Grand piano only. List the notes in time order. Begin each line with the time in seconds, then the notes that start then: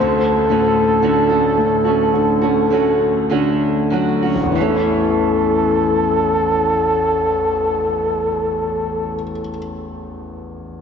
Already playing: D2
0.50 A2
1.02 D3
1.58 A2
2.13 D3
2.71 A3
3.31 D3
3.92 F#3
4.35 A1
4.43 E2
4.51 E3
4.60 A3
4.68 C#4
4.76 E4